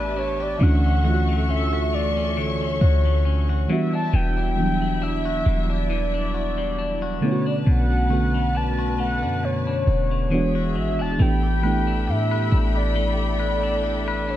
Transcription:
0.00 0.57 A1 loud
0.00 1.28 A3 medium
0.00 0.16 D4 medium
0.00 0.39 G4 medium
0.00 0.57 G4 medium
0.00 0.57 B4 medium
0.00 0.70 B4 medium
0.00 0.18 D5 loud
0.00 3.65 E5 medium
0.00 0.57 A5 medium
0.16 0.84 D4 medium
0.16 0.44 C#5 medium
0.40 0.70 G4 medium
0.40 0.64 D5 medium
0.59 2.39 D2 loud
0.59 2.37 D3 medium
0.59 0.96 E3 medium
0.59 0.96 A3 medium
0.59 0.97 C#4 medium
0.59 0.97 D4 medium
0.59 3.67 A4 medium
0.59 1.50 F#5 loud
0.59 3.66 C#6 medium
0.63 0.98 F#4 medium
0.84 1.48 C#4 medium
1.03 2.44 E3 medium
1.03 2.45 A3 medium
1.03 2.46 D4 medium
1.03 1.72 F#4 medium
1.08 1.13 F4 medium
1.14 2.50 F#4 medium
1.29 1.92 A3 medium
1.49 2.16 C#4 medium
1.49 1.96 E5 loud
1.73 2.81 F#4 medium
1.93 3.04 A3 medium
1.93 2.40 D5 medium
2.17 2.60 C#4 medium
2.37 2.63 C#2 medium
2.37 3.69 D3 medium
2.37 3.70 C#5 loud
2.61 2.81 D2 medium
2.61 3.24 C#4 medium
2.81 3.66 D2 loud
2.81 3.49 F#4 medium
3.05 3.79 A3 medium
3.25 3.79 C#4 medium
3.49 4.17 F#4 medium
3.68 4.41 E3 medium
3.68 4.12 E3 medium
3.68 4.41 G3 medium
3.68 4.42 B3 medium
3.68 4.42 D4 medium
3.68 7.19 E4 medium
3.68 4.43 F#4 medium
3.68 7.19 E5 medium
3.68 3.93 E5 medium
3.93 4.37 D4 medium
3.93 4.17 A5 loud
4.14 5.42 E1 loud
4.14 5.89 E3 medium
4.14 5.05 G5 loud
4.37 5.01 D4 medium
4.56 5.97 E3 medium
4.56 4.59 F#3 soft
4.56 5.99 B3 medium
4.56 5.99 D4 medium
4.60 6.00 F#3 medium
4.60 6.01 G3 medium
4.82 5.44 G3 medium
5.02 5.69 D4 medium
5.02 5.70 E5 loud
5.25 6.34 F#4 medium
5.46 7.19 E1 loud
5.46 6.57 G3 medium
5.70 6.14 D4 medium
5.70 7.19 D5 loud
5.90 7.32 E3 medium
6.14 6.78 D4 medium
6.34 7.02 F#4 medium
6.58 7.32 G3 medium
6.79 7.46 D4 medium
7.02 8.10 F#4 medium
7.21 7.65 B2 medium
7.21 7.94 D3 medium
7.21 7.94 A3 medium
7.21 7.95 B3 medium
7.21 7.95 C#4 medium
7.21 10.28 B4 medium
7.21 7.45 C#5 medium
7.21 10.28 A5 medium
7.25 7.31 E4 medium
7.32 7.99 F#4 medium
7.46 7.90 D4 medium
7.46 7.56 D5 medium
7.66 9.24 B1 medium
7.66 9.42 B2 medium
7.66 8.58 F#5 loud
7.90 8.55 D4 medium
8.09 9.50 D3 medium
8.09 9.51 A3 medium
8.09 9.51 B3 medium
8.09 9.52 C#4 medium
8.09 8.78 F#4 medium
8.13 9.52 F#4 medium
8.34 8.98 A3 medium
8.55 9.22 D4 medium
8.55 8.99 A5 loud
8.79 9.86 F#4 medium
8.99 10.10 A3 medium
8.99 9.46 F#5 loud
9.22 9.84 F#2 medium
9.22 9.67 D4 medium
9.43 10.41 B2 medium
9.43 10.76 C#5 loud
9.67 10.78 D4 medium
9.87 10.77 E1 loud
9.87 10.41 F#4 medium
10.11 10.41 A3 medium
10.30 11.03 E3 medium
10.30 11.90 E3 medium
10.30 10.38 F#3 medium
10.30 11.04 B3 medium
10.30 11.04 D4 medium
10.30 11.19 G#4 medium
10.30 11.19 E5 medium
10.34 11.07 G#3 medium
10.34 11.05 F#4 medium
10.55 11.29 F#4 medium
10.75 11.01 G#1 medium
10.75 11.19 G#3 medium
10.75 11.03 E5 medium
10.99 11.19 E1 medium
10.99 11.87 D4 medium
10.99 11.23 A5 loud
11.18 12.10 A1 loud
11.18 11.54 E3 medium
11.18 11.55 A3 medium
11.18 12.95 A3 medium
11.18 11.56 B3 medium
11.18 11.56 D4 medium
11.18 14.37 A4 medium
11.18 14.37 E5 medium
11.18 14.37 G5 medium
11.18 12.11 G5 loud
11.18 14.37 B5 medium
11.22 11.57 G4 medium
11.43 12.06 G4 medium
11.62 13.03 E3 medium
11.62 13.04 A3 medium
11.62 13.04 B3 medium
11.62 13.05 D4 medium
11.62 12.30 B4 medium
11.66 13.05 E4 medium
11.87 12.51 D4 medium
12.08 12.50 A2 loud
12.08 12.74 G4 medium
12.08 12.78 E5 medium
12.31 13.38 B4 medium
12.51 14.37 A1 loud
12.51 13.63 D4 medium
12.75 13.18 G4 medium
12.75 14.32 D5 loud
12.96 14.37 A3 medium
13.19 13.83 G4 medium
13.39 14.07 B4 medium
13.63 14.28 D4 medium
13.84 14.37 G4 medium
14.08 14.37 B4 medium
14.28 14.37 D4 medium
14.28 14.37 C#5 medium

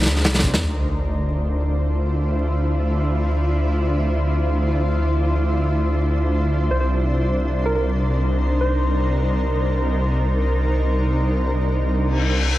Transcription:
0.00 0.59 D4 medium
0.00 0.59 D#4 medium
0.00 0.59 A#4 medium
0.00 0.59 C5 medium
0.00 snare medium
0.00 closed hi-hat medium
0.06 0.27 D2 medium
0.06 snare loud
0.06 closed hi-hat medium
0.16 snare soft
0.24 0.55 C2 loud
0.24 snare loud
0.24 closed hi-hat medium
0.34 snare medium
0.34 closed hi-hat medium
0.39 snare medium
0.39 closed hi-hat medium
0.43 kick medium
0.43 closed hi-hat medium
0.54 0.62 F2 medium
0.54 snare loud
0.54 closed hi-hat medium
0.63 6.69 D2 medium
0.63 12.58 D4 medium
0.63 6.67 E4 medium
0.63 6.67 F4 medium
0.63 12.58 C5 medium
0.63 sub drop medium
6.71 12.58 C2 medium
6.71 12.58 D#4 medium
6.71 12.58 A#4 medium
6.71 6.77 C5 medium
6.80 6.86 C5 medium
7.66 7.72 A#4 medium
7.75 7.81 A#4 medium
8.61 9.14 C5 medium
12.02 reverse cymbal medium

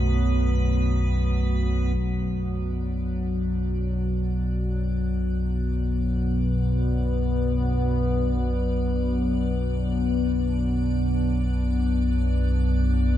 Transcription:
0.00 1.96 B1 medium
0.00 1.97 F#2 medium
0.00 13.18 B2 medium
0.00 13.18 F#3 medium
0.00 1.99 A3 medium
0.00 2.00 B3 medium
0.00 1.99 B4 medium
1.97 13.18 B1 medium
1.97 13.18 F#2 medium
1.97 13.18 D4 medium
1.97 13.18 D5 medium
4.16 13.18 B3 medium

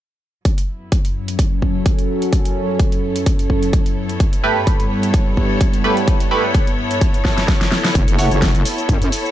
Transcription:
0.45 4.16 F#2 medium
0.45 4.16 F#3 medium
0.45 4.20 F#3 medium
0.45 4.16 C#4 medium
0.45 7.91 A4 medium
0.45 kick loud
0.45 closed hi-hat medium
0.58 9.31 E4 medium
0.58 closed hi-hat soft
0.76 9.31 B3 medium
0.92 kick loud
0.92 closed hi-hat medium
1.05 closed hi-hat soft
1.14 9.31 C#5 medium
1.28 closed hi-hat soft
1.39 kick loud
1.39 closed hi-hat medium
1.48 9.31 A4 medium
1.62 kick medium
1.86 kick loud
1.86 closed hi-hat medium
1.99 closed hi-hat soft
2.22 closed hi-hat soft
2.33 kick loud
2.33 closed hi-hat medium
2.45 closed hi-hat soft
2.79 kick loud
2.79 closed hi-hat medium
2.92 closed hi-hat soft
3.16 closed hi-hat soft
3.26 kick loud
3.26 closed hi-hat medium
3.39 closed hi-hat soft
3.50 kick medium
3.63 closed hi-hat soft
3.73 kick loud
3.73 closed hi-hat medium
3.86 closed hi-hat soft
4.09 closed hi-hat soft
4.20 7.95 G2 medium
4.20 7.91 G2 medium
4.20 7.91 G3 medium
4.20 7.91 B3 medium
4.20 kick loud
4.20 closed hi-hat medium
4.33 closed hi-hat soft
4.44 5.82 A3 medium
4.44 5.82 G4 medium
4.44 5.82 B4 loud
4.67 kick loud
4.67 closed hi-hat medium
4.80 closed hi-hat soft
5.03 closed hi-hat soft
5.14 kick loud
5.14 closed hi-hat medium
5.37 kick medium
5.61 kick loud
5.61 closed hi-hat medium
5.74 closed hi-hat soft
5.84 5.97 A3 medium
5.84 5.97 G4 medium
5.84 5.97 B4 loud
5.97 closed hi-hat soft
6.08 kick loud
6.08 closed hi-hat medium
6.20 closed hi-hat soft
6.31 6.44 A3 medium
6.31 6.44 G4 medium
6.31 6.44 B4 medium
6.54 kick loud
6.54 closed hi-hat medium
6.67 closed hi-hat soft
6.91 closed hi-hat soft
7.01 kick loud
7.01 closed hi-hat medium
7.14 closed hi-hat soft
7.25 kick medium
7.25 snare medium
7.38 snare medium
7.38 closed hi-hat soft
7.48 kick loud
7.48 snare medium
7.48 closed hi-hat medium
7.61 snare medium
7.61 closed hi-hat soft
7.72 snare medium
7.85 snare medium
7.85 closed hi-hat soft
7.95 8.06 F#1 medium
7.95 kick loud
7.95 closed hi-hat medium
7.95 shaker soft
8.08 8.29 F#1 medium
8.08 closed hi-hat medium
8.08 shaker soft
8.19 9.31 A3 medium
8.19 9.31 F#4 medium
8.19 9.31 C#5 loud
8.19 open hi-hat loud
8.19 shaker medium
8.31 8.64 F#1 medium
8.31 closed hi-hat soft
8.31 shaker soft
8.42 kick loud
8.42 snare loud
8.42 closed hi-hat medium
8.42 shaker soft
8.55 closed hi-hat soft
8.55 shaker soft
8.65 open hi-hat loud
8.65 shaker medium
8.78 closed hi-hat soft
8.78 shaker soft
8.89 9.11 F#2 loud
8.89 kick loud
8.89 closed hi-hat medium
8.89 shaker soft
9.02 closed hi-hat medium
9.02 shaker soft
9.12 open hi-hat loud
9.12 shaker medium
9.26 shaker soft

